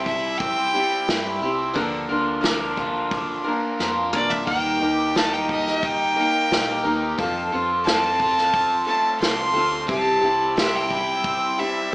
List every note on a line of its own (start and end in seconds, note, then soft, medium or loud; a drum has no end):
0.00 0.70 C2 medium
0.00 0.74 C3 medium
0.00 0.73 G3 medium
0.00 0.40 C4 medium
0.00 0.74 C4 medium
0.00 0.73 E4 medium
0.00 0.72 G4 medium
0.06 1.09 E4 medium
0.06 0.40 E5 medium
0.06 kick medium
0.38 1.42 C4 medium
0.38 1.71 G5 loud
0.38 kick loud
0.38 open hi-hat soft
0.74 1.76 G3 medium
0.74 1.08 C4 soft
0.74 1.08 E4 soft
0.74 1.08 G4 medium
1.08 1.40 G2 loud
1.08 1.42 G3 medium
1.08 1.43 C4 soft
1.08 1.77 E4 medium
1.08 1.42 E4 medium
1.08 1.41 G4 medium
1.08 snare loud
1.08 open hi-hat medium
1.42 1.74 C2 loud
1.42 1.77 C4 medium
1.42 1.75 C4 soft
1.42 1.75 E4 soft
1.42 1.76 G4 medium
1.73 2.08 D2 medium
1.73 2.09 D3 medium
1.73 3.46 D3 medium
1.73 2.09 F3 loud
1.73 2.09 A#3 medium
1.73 2.09 D4 medium
1.73 2.08 A#4 medium
1.73 kick medium
1.73 open hi-hat soft
2.09 3.42 D2 loud
2.09 2.40 A#3 soft
2.09 2.41 D4 medium
2.09 2.77 F4 medium
2.09 2.42 A#4 medium
2.41 3.44 F3 medium
2.41 3.44 A#3 medium
2.41 3.45 D4 medium
2.41 3.12 D4 medium
2.41 3.43 A#4 medium
2.41 snare loud
2.41 open hi-hat medium
2.77 3.80 F4 medium
2.77 kick medium
3.11 4.14 D4 medium
3.11 kick loud
3.11 open hi-hat medium
3.44 3.79 A#3 soft
3.44 4.48 A#3 medium
3.44 3.80 D4 soft
3.44 3.79 A#4 medium
3.79 4.11 F2 medium
3.79 4.13 F3 medium
3.79 4.13 A#3 medium
3.79 4.13 D4 medium
3.79 4.48 F4 medium
3.79 4.12 A#4 medium
3.79 snare medium
4.13 4.45 C2 medium
4.13 4.45 A#3 soft
4.13 4.47 D4 soft
4.13 4.48 D4 medium
4.13 4.47 A#4 medium
4.13 4.32 D5 loud
4.13 mid tom medium
4.30 4.46 E5 medium
4.30 floor tom medium
4.46 4.79 D#2 medium
4.46 4.80 D#3 medium
4.46 4.81 G3 medium
4.46 4.81 A#3 medium
4.46 4.80 D#4 medium
4.46 4.78 A#4 medium
4.46 5.18 G5 loud
4.46 kick medium
4.46 open hi-hat medium
4.50 6.18 D#3 medium
4.80 6.13 D#2 loud
4.80 5.14 A#3 soft
4.80 5.15 D#4 medium
4.80 5.48 G4 medium
4.80 5.14 A#4 medium
5.15 6.16 G3 medium
5.15 6.17 A#3 medium
5.15 5.83 D#4 medium
5.15 6.16 D#4 medium
5.15 6.15 A#4 medium
5.15 5.34 A5 loud
5.15 snare loud
5.15 open hi-hat medium
5.33 5.48 G5 medium
5.49 6.50 G4 medium
5.49 5.86 D#5 loud
5.49 kick medium
5.68 snare soft
5.83 6.84 D#4 medium
5.83 7.15 G5 loud
5.83 kick loud
5.83 open hi-hat soft
6.16 7.19 A#3 medium
6.16 6.50 A#3 soft
6.16 6.51 D#4 soft
6.16 6.50 A#4 medium
6.51 6.83 A#1 medium
6.51 6.84 G3 medium
6.51 6.85 A#3 medium
6.51 6.84 D#4 medium
6.51 7.19 G4 medium
6.51 6.82 A#4 medium
6.51 snare loud
6.51 open hi-hat medium
6.84 7.17 D#2 loud
6.84 7.18 A#3 medium
6.84 7.18 D#4 medium
6.84 7.19 D#4 medium
6.84 7.18 A#4 medium
7.18 7.50 F2 loud
7.18 8.88 F2 medium
7.18 7.52 F3 medium
7.18 7.52 C4 medium
7.18 7.53 F4 loud
7.18 7.51 A4 medium
7.18 kick loud
7.18 open hi-hat medium
7.52 8.84 F2 loud
7.52 7.85 C4 medium
7.52 8.18 F4 medium
7.52 7.85 F4 medium
7.52 7.86 A4 medium
7.84 8.87 F3 medium
7.84 8.53 C4 medium
7.84 8.88 C4 medium
7.84 8.87 F4 medium
7.84 8.84 A5 loud
7.84 snare loud
7.84 open hi-hat soft
7.89 8.85 A4 medium
8.19 9.18 F4 medium
8.19 kick medium
8.38 snare soft
8.53 9.53 C4 medium
8.53 kick medium
8.53 open hi-hat soft
8.86 9.89 A3 medium
8.86 9.20 C4 soft
8.86 9.20 F4 soft
8.86 9.21 A4 medium
8.86 9.19 A5 medium
9.20 9.53 C2 medium
9.20 9.55 F3 medium
9.20 9.55 C4 medium
9.20 9.88 F4 medium
9.20 9.55 F4 medium
9.20 9.52 A4 medium
9.20 9.86 C6 medium
9.20 snare medium
9.20 open hi-hat medium
9.53 9.86 D2 medium
9.53 10.55 C4 medium
9.53 9.87 C4 soft
9.53 9.88 F4 medium
9.53 9.88 A4 medium
9.87 10.21 C2 medium
9.87 10.22 C3 medium
9.87 11.58 C3 medium
9.87 10.22 G3 medium
9.87 10.23 C4 medium
9.87 10.23 E4 medium
9.87 10.20 G4 medium
9.87 10.54 A5 medium
9.87 kick loud
9.87 open hi-hat medium
10.21 11.54 C2 medium
10.21 10.56 C4 soft
10.21 10.89 E4 medium
10.21 10.57 E4 medium
10.21 10.56 G4 medium
10.56 11.58 G3 medium
10.56 11.22 C4 medium
10.56 11.59 C4 medium
10.56 11.59 E4 medium
10.56 11.57 G4 medium
10.56 10.78 E5 loud
10.56 snare loud
10.56 open hi-hat medium
10.76 11.61 G5 loud
10.90 11.91 E4 medium
10.90 kick medium
11.23 11.95 C4 medium
11.23 kick loud
11.23 open hi-hat medium
11.58 11.95 G3 medium
11.58 11.91 C4 soft
11.58 11.92 E4 soft
11.58 11.92 G4 soft
11.58 11.95 E5 medium
11.91 11.95 G3 medium